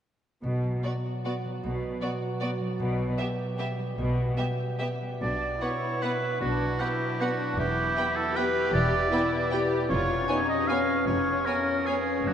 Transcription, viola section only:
0.84 0.92 B3 soft
1.25 1.33 B3 soft
2.02 2.10 B3 soft
2.41 2.49 B3 soft
3.18 3.26 B3 soft
3.59 3.67 B3 soft
4.37 4.45 B3 soft
4.81 4.89 B3 soft
5.21 5.59 D4 soft
5.61 6.40 E4 soft
6.41 6.79 D4 soft
6.80 7.20 E4 soft
7.20 7.58 D4 soft
7.58 8.36 E4 medium
8.36 9.12 G4 medium
9.12 9.52 E4 medium
9.53 9.90 G4 medium
9.91 10.28 F4 medium
10.30 10.69 D#4 soft
10.70 11.07 C#4 soft
11.08 12.24 C#4 soft
12.26 12.34 D4 soft

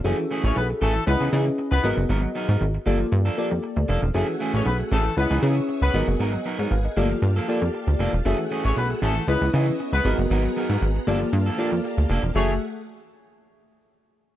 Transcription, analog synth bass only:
0.05 0.14 F#1 loud
0.44 0.52 A1 loud
0.56 0.74 B1 loud
0.82 0.99 A1 medium
1.07 1.16 C#2 loud
1.21 1.29 C#2 loud
1.33 1.50 C#3 loud
1.72 1.80 C#2 medium
1.84 1.93 G#1 loud
1.97 2.06 F#1 loud
2.09 2.27 G#1 loud
2.49 2.57 G#2 loud
2.61 2.79 G#1 loud
2.87 3.04 G1 loud
3.12 3.30 G2 loud
3.51 3.60 F2 medium
3.77 3.85 D2 medium
3.89 3.98 F1 loud
4.03 4.11 E1 loud
4.15 4.24 F#1 loud
4.54 4.62 A1 loud
4.66 4.83 B1 medium
4.92 5.09 A1 loud
5.17 5.26 C#2 loud
5.31 5.39 C#2 loud
5.43 5.60 C#3 loud
5.82 5.90 C#2 medium
5.94 6.03 G#1 loud
6.08 6.16 F#1 loud
6.20 6.37 G#1 loud
6.59 6.67 G#2 loud
6.71 6.89 G#1 loud
6.97 7.14 G1 loud
7.22 7.40 G2 loud
7.62 7.70 F2 medium
7.87 7.96 D2 medium
7.99 8.09 F1 medium
8.13 8.21 E1 medium
8.25 8.35 F#1 loud
8.65 8.73 A1 loud
8.77 8.94 B1 loud
9.02 9.20 A1 loud
9.28 9.37 C#2 loud
9.41 9.50 C#2 loud
9.54 9.71 C#3 loud
9.93 10.01 C#2 medium
10.05 10.14 G#1 loud
10.18 10.27 F#1 loud
10.30 10.48 G#1 loud
10.69 10.78 G#2 loud
10.82 10.99 G#1 loud
11.07 11.25 G1 loud
11.33 11.50 G2 loud
11.72 11.80 F2 medium
11.98 12.06 D2 medium
12.10 12.19 F1 loud
12.23 12.31 E1 loud
12.35 12.59 F#1 loud

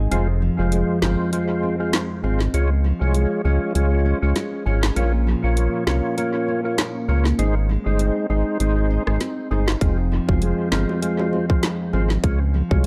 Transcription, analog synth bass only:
0.12 0.50 F1 loud
0.59 0.84 F1 medium
1.02 1.16 G1 loud
2.24 2.49 G#1 medium
2.54 2.93 C#2 loud
3.01 3.26 C2 loud
3.45 3.59 C#2 loud
3.75 4.14 C#2 loud
4.22 4.33 C#2 medium
4.66 4.91 G#1 medium
4.96 5.35 A#1 loud
5.44 5.69 A#1 medium
5.87 6.01 C2 medium
7.09 7.34 C#2 medium
7.39 7.78 G#1 loud
7.86 8.11 G1 medium
8.30 8.44 G#1 medium
8.60 8.99 G#1 loud
9.07 9.18 G#1 medium
9.51 9.76 G1 medium
9.81 10.20 F1 loud
10.29 10.54 F1 loud
10.72 10.86 G1 loud
11.93 12.18 G#1 medium
12.24 12.63 C#2 loud
12.71 12.87 C2 medium

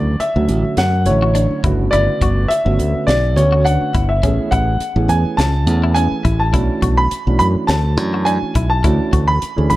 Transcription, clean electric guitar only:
0.00 0.11 F#4 medium
1.22 1.31 F#4 medium
1.35 1.54 D4 medium
1.64 1.83 E4 medium
1.93 2.12 E4 medium
2.22 2.41 F#4 medium
3.52 3.61 F#4 medium
3.66 3.85 D4 medium
3.95 4.14 E4 medium
4.23 4.43 C#4 medium
4.53 4.72 E4 medium
5.84 5.92 E4 medium
5.96 6.15 C#4 medium
6.25 6.44 E4 medium
6.54 6.73 E4 medium
6.82 7.02 F#4 medium
8.14 8.23 F#4 medium
8.26 8.46 D4 medium
8.56 8.75 E4 medium
8.84 9.03 E4 medium
9.13 9.32 F#4 medium

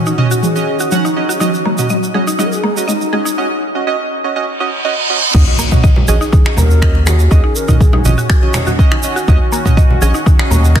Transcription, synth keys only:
0.18 0.27 C#4 medium
0.18 0.27 F#4 medium
0.18 0.27 D#5 loud
0.55 0.89 C#4 medium
0.55 0.89 F#4 medium
0.55 0.89 D#5 medium
0.92 1.06 C#4 medium
0.92 1.06 F#4 medium
0.92 1.06 F#5 loud
1.16 1.38 C#4 medium
1.16 1.38 F#4 medium
1.16 1.38 D#5 medium
1.41 1.50 C#4 medium
1.41 1.50 F#4 medium
1.41 1.50 D#5 medium
1.79 1.92 C#4 medium
1.79 1.92 F#4 medium
1.79 1.92 D#5 medium
2.15 2.24 C#4 medium
2.15 2.24 F#4 medium
2.15 2.24 D#5 medium
2.39 2.48 C#4 medium
2.39 2.48 F#4 medium
2.39 2.48 D#5 loud
2.77 2.90 C#4 medium
2.77 2.90 F#4 medium
2.77 2.90 D#5 medium
3.13 3.22 C#4 medium
3.13 3.22 F#4 medium
3.13 3.22 D#5 medium
3.38 3.47 C#4 loud
3.38 3.47 F#4 medium
3.38 3.47 D#5 loud
3.75 3.85 C#4 medium
3.75 3.85 F#4 medium
3.75 3.85 D#5 medium
3.87 3.96 C#4 loud
3.87 3.96 F#4 medium
3.87 3.96 D#5 loud
4.24 4.34 C#4 medium
4.24 4.34 F#4 medium
4.24 4.34 D#5 medium
4.36 4.45 C#4 loud
4.36 4.45 F#4 medium
4.36 4.45 D#5 loud
4.60 4.70 C#4 loud
4.60 4.70 F#4 medium
4.60 4.70 D#5 loud
4.85 4.94 C#4 loud
4.85 4.94 F#4 medium
4.85 4.94 D#5 loud
5.10 5.19 C#4 loud
5.10 5.19 F#4 medium
5.10 5.19 D#5 loud
5.34 5.44 C#4 medium
5.34 5.44 F#4 medium
5.34 5.44 D#5 loud
5.72 5.85 C#4 medium
5.72 5.85 F#4 medium
5.72 5.85 D#5 medium
6.08 6.17 C#4 medium
6.08 6.17 F#4 medium
6.08 6.17 D#5 loud
6.46 6.79 C#4 medium
6.46 6.79 F#4 medium
6.46 6.79 D#5 medium
6.82 6.96 C#4 loud
6.82 6.96 F#4 medium
6.82 6.96 D#5 loud
7.07 7.21 C#4 medium
7.07 7.21 F#4 medium
7.07 7.21 D#5 medium
7.31 7.40 C#4 medium
7.31 7.40 F#4 medium
7.31 7.40 D#5 loud
7.69 7.82 C#4 medium
7.69 7.82 F#4 medium
7.69 7.82 D#5 medium
8.05 8.14 C#4 medium
8.05 8.14 F#4 medium
8.05 8.14 D#5 loud
8.42 8.76 C#4 medium
8.42 8.76 F#4 medium
8.42 8.76 D#5 medium
8.79 8.93 C#4 medium
8.79 8.93 F#4 medium
8.79 8.93 D#5 loud
9.04 9.18 C#4 medium
9.04 9.18 F#4 medium
9.04 9.18 D#5 medium
9.28 9.37 C#4 medium
9.28 9.37 F#4 medium
9.28 9.37 D#5 loud
9.65 9.79 C#4 medium
9.65 9.79 F#4 medium
9.65 9.79 D#5 loud
10.02 10.11 C#4 medium
10.02 10.11 F#4 medium
10.02 10.11 D#5 loud
10.39 10.73 C#4 medium
10.39 10.73 F#4 medium
10.39 10.73 D#5 medium
10.76 10.80 C#4 loud
10.76 10.80 F#4 medium
10.76 10.80 D#5 loud

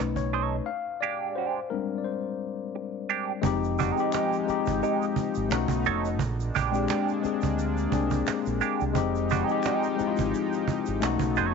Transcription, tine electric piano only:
0.00 0.64 A3 soft
0.00 0.64 C#4 soft
0.00 0.65 D#4 medium
0.00 0.19 B4 medium
0.16 0.69 C#5 medium
0.66 1.02 F5 medium
1.01 1.37 D5 medium
1.35 1.68 C5 medium
1.70 3.39 G3 soft
1.70 3.40 G#3 soft
1.70 3.40 C4 soft
1.70 3.40 D4 medium
1.70 2.00 A#4 medium
1.98 2.05 D5 soft
2.04 2.70 C5 medium
3.42 3.89 G#3 loud
3.42 3.89 C4 medium
3.42 3.90 D#4 loud
3.46 3.91 G4 loud
3.96 4.40 G#3 medium
3.96 4.41 C4 medium
3.96 4.42 D#4 medium
4.00 4.42 G4 loud
4.45 5.50 G#3 medium
4.45 5.50 C4 medium
4.45 5.51 D#4 medium
4.50 5.52 G4 loud
5.49 6.11 A3 medium
5.49 6.11 C#4 medium
5.49 6.12 D#4 medium
5.54 6.13 F#4 loud
6.71 7.16 G#3 medium
6.71 7.17 C4 medium
6.71 7.17 D4 medium
6.76 7.18 G4 medium
7.21 7.83 G#3 medium
7.21 7.84 C4 medium
7.21 7.84 D4 medium
7.26 7.85 G#4 loud
7.90 8.82 G#3 medium
7.90 8.83 C4 medium
7.90 8.84 D4 medium
7.95 8.85 G#4 medium
8.93 9.40 G#3 loud
8.93 9.41 C4 loud
8.93 9.42 D#4 loud
8.98 9.43 G4 loud
9.47 9.92 G#3 medium
9.47 9.93 C4 medium
9.47 9.93 D#4 medium
9.52 9.94 G4 loud
9.96 11.01 G#3 medium
9.96 11.02 C4 medium
9.96 11.02 D#4 medium
10.01 10.07 E4 medium
10.07 11.06 F4 loud
11.00 11.54 A3 medium
11.00 11.54 C#4 medium
11.00 11.54 D#4 medium
11.05 11.54 F#4 loud

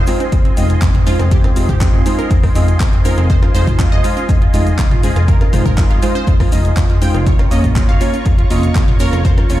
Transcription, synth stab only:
0.08 0.20 G#3 medium
0.08 0.20 D#4 medium
0.08 0.20 F4 medium
0.08 0.20 C5 loud
0.57 0.69 G#3 medium
0.57 0.69 D#4 medium
0.57 0.69 F4 medium
0.57 0.69 D#5 loud
1.07 1.19 G#3 medium
1.07 1.19 D#4 medium
1.07 1.19 F4 medium
1.07 1.19 C5 medium
1.56 2.03 G#3 loud
1.56 2.03 D#4 medium
1.56 2.03 F4 medium
1.56 2.03 C5 loud
2.06 2.18 G#3 loud
2.06 2.18 D#4 medium
2.06 2.18 F4 medium
2.06 2.18 C5 loud
2.55 2.68 G#3 loud
2.55 2.68 D#4 medium
2.55 2.68 F4 medium
2.55 2.68 D#5 loud
3.05 3.17 G#3 medium
3.05 3.17 D#4 medium
3.05 3.17 F4 medium
3.05 3.17 C5 medium
3.55 4.01 G#3 loud
3.55 4.01 D#4 medium
3.55 4.01 F4 medium
3.55 4.01 C5 loud
4.04 4.16 G#3 medium
4.04 4.16 D#4 medium
4.04 4.16 F4 medium
4.04 4.16 C5 loud
4.54 4.66 G#3 loud
4.54 4.66 D#4 medium
4.54 4.66 F4 medium
4.54 4.66 D#5 loud
5.03 5.16 G#3 medium
5.03 5.16 D#4 medium
5.03 5.16 F4 medium
5.03 5.16 C5 medium
5.53 6.00 G#3 medium
5.53 6.00 D#4 medium
5.53 6.00 F4 medium
5.53 6.00 C5 loud
6.03 6.15 G#3 medium
6.03 6.15 D#4 medium
6.03 6.15 F4 medium
6.03 6.15 C5 loud
6.52 6.64 G#3 medium
6.52 6.64 D#4 medium
6.52 6.64 F4 medium
6.52 6.64 D#5 loud
7.02 7.14 G#3 medium
7.02 7.14 D#4 medium
7.02 7.14 F4 medium
7.02 7.14 C5 medium
7.51 7.98 A#3 loud
7.51 7.98 C#4 medium
7.51 7.98 F4 medium
7.51 7.98 C#5 loud
8.01 8.13 A#3 medium
8.01 8.13 C#4 medium
8.01 8.13 F4 medium
8.01 8.13 C#5 loud
8.50 8.63 A#3 loud
8.50 8.63 C#4 medium
8.50 8.63 F4 medium
8.50 8.63 D#5 loud
9.00 9.12 A#3 medium
9.00 9.12 C#4 medium
9.00 9.12 F4 medium
9.00 9.12 C#5 medium
9.50 9.60 A#3 medium
9.50 9.60 C#4 medium
9.50 9.60 F4 medium
9.50 9.60 C#5 loud

